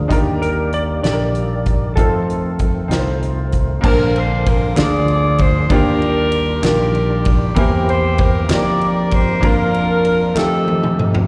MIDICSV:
0, 0, Header, 1, 8, 480
1, 0, Start_track
1, 0, Key_signature, -2, "major"
1, 0, Tempo, 621762
1, 83, Time_signature, 6, 3, 24, 8
1, 8702, End_track
2, 0, Start_track
2, 0, Title_t, "Electric slide guitar"
2, 0, Program_c, 0, 29
2, 323, Note_on_c, 0, 70, 72
2, 546, Note_off_c, 0, 70, 0
2, 571, Note_on_c, 0, 74, 80
2, 634, Note_off_c, 0, 74, 0
2, 799, Note_on_c, 0, 74, 78
2, 1511, Note_on_c, 0, 69, 73
2, 1542, Note_off_c, 0, 74, 0
2, 2445, Note_off_c, 0, 69, 0
2, 8702, End_track
3, 0, Start_track
3, 0, Title_t, "Horn section"
3, 0, Program_c, 1, 61
3, 2970, Note_on_c, 1, 62, 70
3, 2975, Note_on_c, 1, 65, 72
3, 2979, Note_on_c, 1, 70, 98
3, 3194, Note_off_c, 1, 70, 0
3, 3219, Note_on_c, 1, 72, 89
3, 3450, Note_off_c, 1, 72, 0
3, 3452, Note_on_c, 1, 70, 98
3, 3654, Note_off_c, 1, 62, 0
3, 3657, Note_off_c, 1, 65, 0
3, 3686, Note_off_c, 1, 70, 0
3, 3686, Note_on_c, 1, 65, 73
3, 3687, Note_on_c, 1, 68, 73
3, 3689, Note_on_c, 1, 74, 101
3, 3924, Note_off_c, 1, 74, 0
3, 3937, Note_on_c, 1, 74, 96
3, 4152, Note_off_c, 1, 74, 0
3, 4166, Note_on_c, 1, 72, 89
3, 4372, Note_off_c, 1, 65, 0
3, 4372, Note_off_c, 1, 68, 0
3, 4403, Note_off_c, 1, 72, 0
3, 4410, Note_on_c, 1, 70, 107
3, 4412, Note_on_c, 1, 62, 82
3, 4415, Note_on_c, 1, 67, 79
3, 5095, Note_off_c, 1, 62, 0
3, 5096, Note_off_c, 1, 67, 0
3, 5113, Note_off_c, 1, 70, 0
3, 5123, Note_on_c, 1, 70, 85
3, 5129, Note_on_c, 1, 62, 65
3, 5129, Note_on_c, 1, 67, 66
3, 5630, Note_off_c, 1, 70, 0
3, 5813, Note_off_c, 1, 62, 0
3, 5813, Note_off_c, 1, 67, 0
3, 5840, Note_on_c, 1, 70, 96
3, 5843, Note_on_c, 1, 67, 74
3, 6063, Note_off_c, 1, 70, 0
3, 6092, Note_on_c, 1, 72, 97
3, 6325, Note_off_c, 1, 72, 0
3, 6330, Note_on_c, 1, 70, 89
3, 6530, Note_off_c, 1, 67, 0
3, 6561, Note_off_c, 1, 70, 0
3, 6570, Note_on_c, 1, 70, 76
3, 6571, Note_on_c, 1, 74, 98
3, 6573, Note_on_c, 1, 67, 74
3, 6805, Note_off_c, 1, 74, 0
3, 6814, Note_on_c, 1, 74, 88
3, 7030, Note_off_c, 1, 74, 0
3, 7046, Note_on_c, 1, 72, 100
3, 7254, Note_off_c, 1, 70, 0
3, 7256, Note_off_c, 1, 67, 0
3, 7283, Note_off_c, 1, 72, 0
3, 7296, Note_on_c, 1, 70, 100
3, 7297, Note_on_c, 1, 62, 74
3, 7298, Note_on_c, 1, 65, 76
3, 7979, Note_off_c, 1, 62, 0
3, 7979, Note_off_c, 1, 65, 0
3, 8004, Note_on_c, 1, 69, 81
3, 8005, Note_on_c, 1, 60, 55
3, 8008, Note_on_c, 1, 63, 60
3, 8009, Note_off_c, 1, 70, 0
3, 8543, Note_off_c, 1, 69, 0
3, 8591, Note_off_c, 1, 60, 0
3, 8591, Note_off_c, 1, 63, 0
3, 8702, End_track
4, 0, Start_track
4, 0, Title_t, "Grand piano"
4, 0, Program_c, 2, 0
4, 0, Control_c, 2, 64, 127
4, 0, Note_on_c, 2, 50, 44
4, 0, Note_on_c, 2, 62, 48
4, 0, Note_on_c, 2, 65, 44
4, 0, Note_on_c, 2, 68, 47
4, 0, Note_on_c, 2, 70, 53
4, 62, Note_off_c, 2, 62, 0
4, 62, Note_on_c, 2, 62, 71
4, 68, Note_on_c, 2, 63, 75
4, 73, Note_on_c, 2, 51, 60
4, 83, Note_off_c, 2, 65, 0
4, 83, Note_on_c, 2, 65, 54
4, 93, Note_off_c, 2, 68, 0
4, 93, Control_c, 2, 64, 0
4, 95, Note_off_c, 2, 70, 0
4, 95, Note_on_c, 2, 70, 92
4, 98, Note_off_c, 2, 50, 0
4, 133, Note_off_c, 2, 65, 0
4, 134, Note_on_c, 2, 67, 69
4, 234, Control_c, 2, 64, 127
4, 660, Note_off_c, 2, 62, 0
4, 664, Note_off_c, 2, 63, 0
4, 677, Note_off_c, 2, 70, 0
4, 697, Note_off_c, 2, 67, 0
4, 767, Note_off_c, 2, 51, 0
4, 787, Note_on_c, 2, 62, 49
4, 797, Note_on_c, 2, 63, 45
4, 806, Note_on_c, 2, 67, 43
4, 818, Note_on_c, 2, 69, 42
4, 860, Note_off_c, 2, 69, 0
4, 868, Note_on_c, 2, 70, 60
4, 1383, Note_off_c, 2, 62, 0
4, 1388, Note_off_c, 2, 63, 0
4, 1392, Note_off_c, 2, 67, 0
4, 1423, Note_off_c, 2, 70, 0
4, 1508, Note_on_c, 2, 60, 64
4, 1520, Note_on_c, 2, 63, 57
4, 1525, Note_on_c, 2, 65, 59
4, 1531, Control_c, 2, 64, 0
4, 1538, Note_on_c, 2, 69, 68
4, 1674, Control_c, 2, 64, 127
4, 2103, Note_off_c, 2, 60, 0
4, 2109, Note_off_c, 2, 63, 0
4, 2112, Note_off_c, 2, 65, 0
4, 2118, Note_off_c, 2, 69, 0
4, 2224, Note_on_c, 2, 60, 62
4, 2235, Note_on_c, 2, 63, 52
4, 2248, Note_on_c, 2, 65, 52
4, 2257, Note_on_c, 2, 70, 53
4, 2299, Note_off_c, 2, 70, 0
4, 2307, Note_on_c, 2, 72, 62
4, 2821, Note_off_c, 2, 60, 0
4, 2826, Note_off_c, 2, 63, 0
4, 2833, Note_off_c, 2, 65, 0
4, 2862, Note_off_c, 2, 72, 0
4, 2940, Note_on_c, 2, 58, 82
4, 2949, Note_on_c, 2, 60, 73
4, 2956, Note_on_c, 2, 46, 62
4, 2959, Note_on_c, 2, 62, 74
4, 2968, Note_on_c, 2, 81, 85
4, 2972, Control_c, 2, 64, 0
4, 3089, Control_c, 2, 64, 127
4, 3539, Note_off_c, 2, 58, 0
4, 3543, Note_off_c, 2, 60, 0
4, 3548, Note_off_c, 2, 62, 0
4, 3552, Note_off_c, 2, 81, 0
4, 3647, Note_off_c, 2, 46, 0
4, 3664, Note_on_c, 2, 58, 62
4, 3676, Note_on_c, 2, 62, 57
4, 3679, Note_on_c, 2, 50, 58
4, 3684, Note_on_c, 2, 65, 57
4, 3689, Control_c, 2, 64, 0
4, 3691, Note_on_c, 2, 68, 62
4, 3845, Control_c, 2, 64, 127
4, 4260, Note_off_c, 2, 58, 0
4, 4266, Note_off_c, 2, 62, 0
4, 4270, Note_off_c, 2, 65, 0
4, 4274, Note_off_c, 2, 68, 0
4, 4368, Note_off_c, 2, 50, 0
4, 4396, Note_on_c, 2, 62, 85
4, 4406, Note_on_c, 2, 58, 72
4, 4410, Control_c, 2, 64, 0
4, 4411, Note_on_c, 2, 51, 66
4, 4412, Note_on_c, 2, 65, 76
4, 4425, Note_on_c, 2, 67, 88
4, 4530, Control_c, 2, 64, 127
4, 4986, Note_off_c, 2, 62, 0
4, 4991, Note_off_c, 2, 58, 0
4, 4994, Note_off_c, 2, 65, 0
4, 5000, Note_off_c, 2, 67, 0
4, 5094, Note_off_c, 2, 51, 0
4, 5107, Note_on_c, 2, 62, 62
4, 5118, Note_on_c, 2, 51, 60
4, 5128, Note_on_c, 2, 65, 56
4, 5140, Note_on_c, 2, 67, 67
4, 5701, Note_off_c, 2, 62, 0
4, 5707, Note_off_c, 2, 51, 0
4, 5712, Note_off_c, 2, 65, 0
4, 5718, Note_off_c, 2, 67, 0
4, 5826, Note_on_c, 2, 58, 77
4, 5833, Note_on_c, 2, 60, 74
4, 5841, Note_on_c, 2, 52, 62
4, 5843, Note_on_c, 2, 64, 79
4, 5848, Control_c, 2, 64, 0
4, 5858, Note_on_c, 2, 67, 90
4, 5972, Control_c, 2, 64, 127
4, 6421, Note_off_c, 2, 58, 0
4, 6425, Note_off_c, 2, 60, 0
4, 6429, Note_off_c, 2, 64, 0
4, 6437, Note_off_c, 2, 67, 0
4, 6529, Note_off_c, 2, 52, 0
4, 6545, Note_on_c, 2, 58, 62
4, 6553, Note_on_c, 2, 63, 55
4, 6565, Note_on_c, 2, 65, 57
4, 6569, Control_c, 2, 64, 0
4, 6571, Note_on_c, 2, 67, 67
4, 6727, Control_c, 2, 64, 127
4, 7141, Note_off_c, 2, 58, 0
4, 7145, Note_off_c, 2, 63, 0
4, 7150, Note_off_c, 2, 65, 0
4, 7154, Note_off_c, 2, 67, 0
4, 7262, Note_on_c, 2, 58, 86
4, 7270, Note_on_c, 2, 62, 74
4, 7280, Note_on_c, 2, 65, 71
4, 7288, Control_c, 2, 64, 0
4, 7289, Note_on_c, 2, 70, 93
4, 7440, Control_c, 2, 64, 127
4, 7860, Note_off_c, 2, 58, 0
4, 7864, Note_off_c, 2, 62, 0
4, 7869, Note_off_c, 2, 65, 0
4, 7873, Note_off_c, 2, 70, 0
4, 7983, Note_on_c, 2, 57, 67
4, 7989, Note_on_c, 2, 63, 54
4, 8001, Note_on_c, 2, 65, 54
4, 8009, Control_c, 2, 64, 0
4, 8011, Note_on_c, 2, 67, 72
4, 8165, Control_c, 2, 64, 127
4, 8581, Note_off_c, 2, 57, 0
4, 8584, Note_off_c, 2, 63, 0
4, 8591, Note_off_c, 2, 65, 0
4, 8596, Note_off_c, 2, 67, 0
4, 8702, End_track
5, 0, Start_track
5, 0, Title_t, "Tonewheel organ"
5, 0, Program_c, 3, 16
5, 0, Note_on_c, 3, 53, 51
5, 0, Note_on_c, 3, 62, 41
5, 0, Note_on_c, 3, 68, 50
5, 70, Note_on_c, 3, 67, 62
5, 74, Note_on_c, 3, 51, 60
5, 74, Note_on_c, 3, 58, 55
5, 76, Note_on_c, 3, 74, 52
5, 85, Note_off_c, 3, 53, 0
5, 86, Note_off_c, 3, 62, 0
5, 86, Note_off_c, 3, 68, 0
5, 1487, Note_off_c, 3, 67, 0
5, 1489, Note_off_c, 3, 51, 0
5, 1489, Note_off_c, 3, 58, 0
5, 1490, Note_off_c, 3, 74, 0
5, 1528, Note_on_c, 3, 65, 52
5, 1530, Note_on_c, 3, 51, 49
5, 1532, Note_on_c, 3, 57, 43
5, 1533, Note_on_c, 3, 60, 45
5, 2935, Note_off_c, 3, 65, 0
5, 2936, Note_off_c, 3, 51, 0
5, 2937, Note_off_c, 3, 57, 0
5, 2938, Note_off_c, 3, 60, 0
5, 2967, Note_on_c, 3, 58, 56
5, 2969, Note_on_c, 3, 50, 61
5, 2970, Note_on_c, 3, 70, 66
5, 2974, Note_on_c, 3, 60, 50
5, 3683, Note_off_c, 3, 58, 0
5, 3684, Note_off_c, 3, 50, 0
5, 3685, Note_off_c, 3, 70, 0
5, 3687, Note_off_c, 3, 60, 0
5, 3706, Note_on_c, 3, 62, 53
5, 3711, Note_on_c, 3, 67, 54
5, 3713, Note_on_c, 3, 58, 57
5, 3714, Note_on_c, 3, 53, 61
5, 3746, Note_off_c, 3, 67, 0
5, 3761, Note_on_c, 3, 68, 63
5, 4402, Note_off_c, 3, 62, 0
5, 4409, Note_on_c, 3, 55, 57
5, 4409, Note_on_c, 3, 65, 67
5, 4411, Note_on_c, 3, 62, 56
5, 4414, Note_on_c, 3, 51, 60
5, 4416, Note_off_c, 3, 53, 0
5, 4416, Note_off_c, 3, 58, 0
5, 4440, Note_off_c, 3, 68, 0
5, 5815, Note_off_c, 3, 55, 0
5, 5815, Note_off_c, 3, 65, 0
5, 5816, Note_off_c, 3, 62, 0
5, 5817, Note_off_c, 3, 51, 0
5, 5846, Note_on_c, 3, 67, 71
5, 5849, Note_on_c, 3, 60, 59
5, 5854, Note_on_c, 3, 58, 58
5, 5857, Note_on_c, 3, 52, 60
5, 6560, Note_off_c, 3, 58, 0
5, 6562, Note_off_c, 3, 67, 0
5, 6564, Note_off_c, 3, 60, 0
5, 6568, Note_off_c, 3, 52, 0
5, 6569, Note_on_c, 3, 58, 54
5, 6573, Note_on_c, 3, 53, 59
5, 6573, Note_on_c, 3, 67, 68
5, 6574, Note_on_c, 3, 63, 58
5, 7273, Note_off_c, 3, 53, 0
5, 7275, Note_off_c, 3, 58, 0
5, 7282, Note_on_c, 3, 53, 66
5, 7283, Note_on_c, 3, 62, 58
5, 7285, Note_on_c, 3, 58, 60
5, 7286, Note_off_c, 3, 67, 0
5, 7287, Note_off_c, 3, 63, 0
5, 7288, Note_on_c, 3, 70, 72
5, 7989, Note_off_c, 3, 53, 0
5, 7999, Note_on_c, 3, 53, 63
5, 8002, Note_off_c, 3, 62, 0
5, 8002, Note_on_c, 3, 57, 53
5, 8002, Note_on_c, 3, 63, 54
5, 8002, Note_on_c, 3, 66, 52
5, 8003, Note_off_c, 3, 58, 0
5, 8005, Note_off_c, 3, 70, 0
5, 8044, Note_on_c, 3, 67, 67
5, 8051, Note_off_c, 3, 66, 0
5, 8702, Note_off_c, 3, 53, 0
5, 8702, Note_off_c, 3, 57, 0
5, 8702, Note_off_c, 3, 63, 0
5, 8702, Note_off_c, 3, 67, 0
5, 8702, End_track
6, 0, Start_track
6, 0, Title_t, "French horn section"
6, 0, Program_c, 4, 60
6, 0, Note_on_c, 4, 56, 51
6, 0, Note_on_c, 4, 58, 60
6, 0, Note_on_c, 4, 74, 69
6, 79, Note_off_c, 4, 56, 0
6, 80, Note_on_c, 4, 51, 67
6, 81, Note_on_c, 4, 55, 62
6, 1499, Note_off_c, 4, 74, 0
6, 1500, Note_off_c, 4, 58, 0
6, 1507, Note_off_c, 4, 55, 0
6, 1521, Note_on_c, 4, 57, 56
6, 1523, Note_on_c, 4, 60, 70
6, 1527, Note_on_c, 4, 53, 55
6, 2931, Note_off_c, 4, 51, 0
6, 2946, Note_off_c, 4, 57, 0
6, 2947, Note_off_c, 4, 60, 0
6, 2949, Note_off_c, 4, 53, 0
6, 8702, End_track
7, 0, Start_track
7, 0, Title_t, "Fingered electric bass"
7, 0, Program_c, 5, 33
7, 79, Note_on_c, 5, 39, 80
7, 770, Note_off_c, 5, 39, 0
7, 800, Note_on_c, 5, 34, 62
7, 1490, Note_off_c, 5, 34, 0
7, 1520, Note_on_c, 5, 41, 82
7, 2210, Note_off_c, 5, 41, 0
7, 2231, Note_on_c, 5, 36, 77
7, 2925, Note_off_c, 5, 36, 0
7, 2964, Note_on_c, 5, 34, 93
7, 3651, Note_off_c, 5, 34, 0
7, 3677, Note_on_c, 5, 38, 88
7, 4367, Note_off_c, 5, 38, 0
7, 4404, Note_on_c, 5, 39, 98
7, 5090, Note_off_c, 5, 39, 0
7, 5117, Note_on_c, 5, 34, 96
7, 5807, Note_off_c, 5, 34, 0
7, 5843, Note_on_c, 5, 40, 96
7, 6530, Note_off_c, 5, 40, 0
7, 6556, Note_on_c, 5, 41, 104
7, 7247, Note_off_c, 5, 41, 0
7, 7279, Note_on_c, 5, 41, 102
7, 7969, Note_off_c, 5, 41, 0
7, 8002, Note_on_c, 5, 41, 88
7, 8692, Note_off_c, 5, 41, 0
7, 8702, End_track
8, 0, Start_track
8, 0, Title_t, "Drums"
8, 81, Note_on_c, 9, 36, 87
8, 84, Note_on_c, 9, 42, 61
8, 158, Note_off_c, 9, 36, 0
8, 161, Note_off_c, 9, 42, 0
8, 327, Note_on_c, 9, 42, 39
8, 404, Note_off_c, 9, 42, 0
8, 560, Note_on_c, 9, 42, 38
8, 637, Note_off_c, 9, 42, 0
8, 802, Note_on_c, 9, 42, 58
8, 810, Note_on_c, 9, 38, 83
8, 879, Note_off_c, 9, 42, 0
8, 888, Note_off_c, 9, 38, 0
8, 1040, Note_on_c, 9, 42, 34
8, 1117, Note_off_c, 9, 42, 0
8, 1279, Note_on_c, 9, 42, 36
8, 1284, Note_on_c, 9, 36, 72
8, 1356, Note_off_c, 9, 42, 0
8, 1362, Note_off_c, 9, 36, 0
8, 1521, Note_on_c, 9, 36, 90
8, 1522, Note_on_c, 9, 42, 56
8, 1598, Note_off_c, 9, 36, 0
8, 1599, Note_off_c, 9, 42, 0
8, 1773, Note_on_c, 9, 42, 37
8, 1850, Note_off_c, 9, 42, 0
8, 1999, Note_on_c, 9, 42, 38
8, 2005, Note_on_c, 9, 36, 69
8, 2076, Note_off_c, 9, 42, 0
8, 2082, Note_off_c, 9, 36, 0
8, 2245, Note_on_c, 9, 42, 53
8, 2253, Note_on_c, 9, 38, 82
8, 2322, Note_off_c, 9, 42, 0
8, 2330, Note_off_c, 9, 38, 0
8, 2489, Note_on_c, 9, 42, 32
8, 2566, Note_off_c, 9, 42, 0
8, 2719, Note_on_c, 9, 42, 39
8, 2726, Note_on_c, 9, 36, 63
8, 2796, Note_off_c, 9, 42, 0
8, 2803, Note_off_c, 9, 36, 0
8, 2962, Note_on_c, 9, 36, 115
8, 2963, Note_on_c, 9, 49, 94
8, 3039, Note_off_c, 9, 36, 0
8, 3040, Note_off_c, 9, 49, 0
8, 3209, Note_on_c, 9, 51, 39
8, 3286, Note_off_c, 9, 51, 0
8, 3445, Note_on_c, 9, 51, 55
8, 3448, Note_on_c, 9, 36, 92
8, 3522, Note_off_c, 9, 51, 0
8, 3525, Note_off_c, 9, 36, 0
8, 3683, Note_on_c, 9, 39, 91
8, 3685, Note_on_c, 9, 51, 61
8, 3693, Note_on_c, 9, 38, 95
8, 3760, Note_off_c, 9, 39, 0
8, 3762, Note_off_c, 9, 51, 0
8, 3771, Note_off_c, 9, 38, 0
8, 3922, Note_on_c, 9, 51, 34
8, 3999, Note_off_c, 9, 51, 0
8, 4156, Note_on_c, 9, 51, 53
8, 4165, Note_on_c, 9, 36, 91
8, 4233, Note_off_c, 9, 51, 0
8, 4242, Note_off_c, 9, 36, 0
8, 4400, Note_on_c, 9, 51, 63
8, 4401, Note_on_c, 9, 36, 102
8, 4477, Note_off_c, 9, 51, 0
8, 4478, Note_off_c, 9, 36, 0
8, 4646, Note_on_c, 9, 51, 37
8, 4723, Note_off_c, 9, 51, 0
8, 4876, Note_on_c, 9, 51, 53
8, 4954, Note_off_c, 9, 51, 0
8, 5123, Note_on_c, 9, 39, 91
8, 5123, Note_on_c, 9, 51, 59
8, 5131, Note_on_c, 9, 38, 97
8, 5200, Note_off_c, 9, 39, 0
8, 5200, Note_off_c, 9, 51, 0
8, 5209, Note_off_c, 9, 38, 0
8, 5362, Note_on_c, 9, 51, 33
8, 5440, Note_off_c, 9, 51, 0
8, 5597, Note_on_c, 9, 51, 55
8, 5606, Note_on_c, 9, 36, 91
8, 5674, Note_off_c, 9, 51, 0
8, 5683, Note_off_c, 9, 36, 0
8, 5838, Note_on_c, 9, 51, 66
8, 5841, Note_on_c, 9, 36, 111
8, 5915, Note_off_c, 9, 51, 0
8, 5918, Note_off_c, 9, 36, 0
8, 6089, Note_on_c, 9, 51, 38
8, 6166, Note_off_c, 9, 51, 0
8, 6316, Note_on_c, 9, 51, 56
8, 6323, Note_on_c, 9, 36, 94
8, 6393, Note_off_c, 9, 51, 0
8, 6400, Note_off_c, 9, 36, 0
8, 6560, Note_on_c, 9, 51, 59
8, 6561, Note_on_c, 9, 39, 96
8, 6568, Note_on_c, 9, 38, 114
8, 6637, Note_off_c, 9, 51, 0
8, 6638, Note_off_c, 9, 39, 0
8, 6645, Note_off_c, 9, 38, 0
8, 6804, Note_on_c, 9, 51, 35
8, 6881, Note_off_c, 9, 51, 0
8, 7035, Note_on_c, 9, 51, 53
8, 7043, Note_on_c, 9, 36, 83
8, 7112, Note_off_c, 9, 51, 0
8, 7120, Note_off_c, 9, 36, 0
8, 7279, Note_on_c, 9, 36, 113
8, 7281, Note_on_c, 9, 51, 61
8, 7356, Note_off_c, 9, 36, 0
8, 7358, Note_off_c, 9, 51, 0
8, 7521, Note_on_c, 9, 51, 39
8, 7598, Note_off_c, 9, 51, 0
8, 7755, Note_on_c, 9, 51, 52
8, 7833, Note_off_c, 9, 51, 0
8, 8000, Note_on_c, 9, 39, 93
8, 8012, Note_on_c, 9, 38, 53
8, 8077, Note_off_c, 9, 39, 0
8, 8089, Note_off_c, 9, 38, 0
8, 8243, Note_on_c, 9, 48, 76
8, 8321, Note_off_c, 9, 48, 0
8, 8364, Note_on_c, 9, 47, 67
8, 8441, Note_off_c, 9, 47, 0
8, 8486, Note_on_c, 9, 45, 94
8, 8563, Note_off_c, 9, 45, 0
8, 8604, Note_on_c, 9, 43, 92
8, 8681, Note_off_c, 9, 43, 0
8, 8702, End_track
0, 0, End_of_file